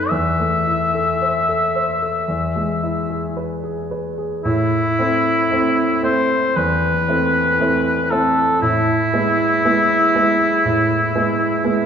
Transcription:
Already playing: grand piano A3 B3 D#4 A4, cor anglais B4
0.09 grand piano E2, cor anglais E5
0.39 grand piano A3
0.67 grand piano E4
0.95 grand piano A4
1.22 grand piano C5
1.49 grand piano A4
1.75 grand piano C5
2.02 grand piano A4
2.28 grand piano E2
2.56 grand piano G#3
2.83 grand piano E4
3.10 grand piano G#4
3.37 grand piano B4
3.64 grand piano G#4
3.91 grand piano B4
4.18 grand piano G#4
4.44 grand piano A2, cor anglais E4
4.99 grand piano A3 C4 E4
5.51 grand piano A3 C4 E4
6.03 grand piano A3 C4 E4, cor anglais C5
6.56 grand piano E2, cor anglais B4
7.08 grand piano A3 C4 E4
7.60 grand piano A3 C4 E4
8.10 grand piano A3 C4 E4, cor anglais A4
8.62 grand piano A2, cor anglais E4
9.13 grand piano G#3 B3 E4
9.65 grand piano G#3 B3 E4
10.15 grand piano G#3 B3 E4
10.65 grand piano A2
11.15 grand piano G#3 B3 E4
11.64 grand piano G#3 B3 E4

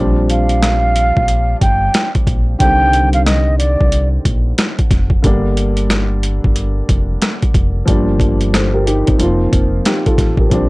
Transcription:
Already playing: fingered electric bass A#1, grand piano F3 G3 C4
0.00 grand piano D4
0.30 flute F5, closed hi-hat
0.49 closed hi-hat
0.63 cross-stick, snare, closed hi-hat
0.96 closed hi-hat
1.17 fingered electric bass A#1, kick
1.28 closed hi-hat
1.61 fingered electric bass G1, flute G5, kick, closed hi-hat
1.94 cross-stick, snare, closed hi-hat
2.15 kick, closed hi-hat
2.27 fingered electric bass A#1, kick, closed hi-hat
2.59 fingered electric bass C2, grand piano D#3 G3 C4, flute G5, kick, closed hi-hat
2.63 grand piano D3
2.93 closed hi-hat
3.13 flute F5, closed hi-hat
3.26 flute D#5, cross-stick, snare, closed hi-hat
3.58 flute D5, closed hi-hat
3.81 fingered electric bass C2, kick
3.92 closed hi-hat
4.25 fingered electric bass A#1, kick, closed hi-hat
4.58 cross-stick, snare, closed hi-hat
4.79 kick, closed hi-hat
4.91 fingered electric bass F1, kick, snare, closed hi-hat
5.10 kick
5.22 fingered electric bass G1, grand piano D3 G3 A#3, kick, closed hi-hat
5.27 grand piano D4
5.57 closed hi-hat
5.77 closed hi-hat
5.90 cross-stick, snare, closed hi-hat
6.23 closed hi-hat
6.44 fingered electric bass G1, kick
6.56 closed hi-hat
6.89 fingered electric bass F1, kick, closed hi-hat
7.22 cross-stick, snare, closed hi-hat
7.42 kick, closed hi-hat
7.54 fingered electric bass F1, kick, closed hi-hat
7.86 fingered electric bass G1, grand piano F3 G3 A#3, kick, closed hi-hat
7.90 grand piano D4
8.20 kick, closed hi-hat
8.41 closed hi-hat
8.53 grand piano A4 C5, cross-stick, snare, closed hi-hat
8.73 grand piano G4 A#4
8.86 grand piano D#4 G4, closed hi-hat
9.06 fingered electric bass G1, grand piano C4 D#4, kick, closed hi-hat
9.18 fingered electric bass F1, grand piano F3 A#3 C4, closed hi-hat
9.22 grand piano F4
9.53 fingered electric bass F1, kick, closed hi-hat
9.85 grand piano D#4 G4, cross-stick, snare, closed hi-hat
10.06 grand piano F4 A4, kick, closed hi-hat
10.18 fingered electric bass A1, kick, snare, closed hi-hat
10.37 grand piano G4 A#4, kick
10.49 fingered electric bass A#1, grand piano F3 G3 C4, kick, closed hi-hat
10.54 grand piano D4

